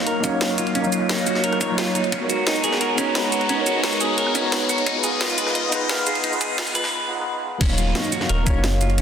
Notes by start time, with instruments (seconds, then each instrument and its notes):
Already playing: tine electric piano F#3 A#3 D#4 C#5 F5, analog synth pad F#3 C#5 F5, riser
0.07 clean electric guitar A#4, closed hi-hat
0.20 tine electric piano A#3 D#4 F5, clean electric guitar C#4, kick, closed hi-hat, shaker
0.25 tine electric piano F#4 C#5
0.41 clean electric guitar C#5, snare, closed hi-hat
0.58 clean electric guitar F4, closed hi-hat, shaker
0.67 closed hi-hat
0.75 clean electric guitar C#4, closed hi-hat
0.81 tine electric piano A#3 D#4 F5, shaker
0.85 tine electric piano F#3 C#5
0.92 clean electric guitar F4, closed hi-hat, shaker
1.09 clean electric guitar D#4, snare, closed hi-hat
1.18 shaker
1.27 clean electric guitar F#4, closed hi-hat, shaker
1.35 snare
1.44 clean electric guitar A#4, closed hi-hat
1.53 cross-stick, closed hi-hat
1.59 tine electric piano A#3 D#4 F4 F#4 C#5, clean electric guitar C#5, kick, closed hi-hat, shaker
1.66 tine electric piano A#3 D#4 F4
1.71 tine electric piano F#3 C#5
1.78 clean electric guitar F4, snare, closed hi-hat
1.95 clean electric guitar D#4, cross-stick, closed hi-hat, shaker
2.04 closed hi-hat
2.12 analog synth pad G#3 B3 F#4 A#5, clean electric guitar C#4, kick, closed hi-hat
2.18 tine electric piano B3 D#4 F#4
2.23 tine electric piano A#4 C#5
2.30 clean electric guitar F#4, closed hi-hat, shaker
2.47 clean electric guitar D#4, snare, closed hi-hat
2.55 shaker
2.64 clean electric guitar G#4, closed hi-hat, shaker
2.73 cross-stick, snare
2.81 clean electric guitar A#4, closed hi-hat
2.95 tine electric piano B3 D#4 F#4, clean electric guitar C#4, kick, closed hi-hat, shaker
3.00 tine electric piano C#5 A#5
3.15 clean electric guitar B4, snare, closed hi-hat
3.32 clean electric guitar F#4, closed hi-hat, shaker
3.41 closed hi-hat
3.49 clean electric guitar C#4, closed hi-hat
3.55 tine electric piano B3 D#4 F#4
3.60 tine electric piano A#4 C#5
3.66 clean electric guitar F#4, closed hi-hat, shaker
3.84 clean electric guitar D#4, snare, closed hi-hat
3.92 shaker
4.01 clean electric guitar G#4, closed hi-hat, shaker
4.18 clean electric guitar A#4, closed hi-hat
4.27 cross-stick
4.33 tine electric piano B3 D#4 F#4 A#4 C#5, clean electric guitar C#4, kick, closed hi-hat, shaker
4.41 tine electric piano B3 D#4 F#4
4.45 tine electric piano C#5 A#5
4.52 clean electric guitar B4, snare, closed hi-hat
4.69 clean electric guitar F#4, cross-stick, closed hi-hat, shaker
4.78 closed hi-hat
4.86 clean electric guitar D#4, analog synth pad F4 D#5, kick, closed hi-hat
4.92 tine electric piano B3 D#4 F4
4.97 tine electric piano G#4 B4
5.04 clean electric guitar G#4, closed hi-hat, shaker
5.21 clean electric guitar F4, snare, closed hi-hat
5.30 shaker
5.38 clean electric guitar B4, closed hi-hat, shaker
5.47 cross-stick, snare
5.55 clean electric guitar D#5, closed hi-hat
5.69 tine electric piano B3 D#4 F4, clean electric guitar D#4, kick, closed hi-hat, shaker
5.74 tine electric piano G#4 B4
5.89 clean electric guitar F5, snare, closed hi-hat
6.07 clean electric guitar G#4, closed hi-hat, shaker
6.15 closed hi-hat
6.24 clean electric guitar D#4, closed hi-hat
6.29 tine electric piano B3 D#4 F4, shaker
6.34 tine electric piano G#4 B4
6.41 clean electric guitar G#4, kick, closed hi-hat, shaker
6.58 clean electric guitar F4, snare, closed hi-hat
6.67 closed hi-hat, shaker
6.75 clean electric guitar B4, closed hi-hat, shaker
6.84 cross-stick, snare
7.08 tine electric piano B3 D#4 F4 G#4 B4
7.15 tine electric piano B3 D#4 F4
7.20 tine electric piano G#4 B4
7.61 sub bass D#1, analog synth pad F#3 F5 C#6, clean electric guitar C#4, kick, closed hi-hat, crash, downlifter
7.67 tine electric piano A#3 D#4 F5
7.71 tine electric piano F#3 C#5
7.78 clean electric guitar F4, closed hi-hat, shaker
7.95 clean electric guitar D#4, snare, closed hi-hat
8.04 shaker
8.12 clean electric guitar F#4, closed hi-hat, shaker
8.21 cross-stick, snare
8.29 sub bass D#1, clean electric guitar A#4, closed hi-hat
8.44 tine electric piano A#3 D#4 F5, clean electric guitar C#4, kick, closed hi-hat, shaker
8.48 tine electric piano F#4 C#5
8.55 sub bass F#1
8.64 clean electric guitar C#5, snare, closed hi-hat
8.81 clean electric guitar F4, open hi-hat, shaker
8.90 closed hi-hat
8.98 clean electric guitar C#4, closed hi-hat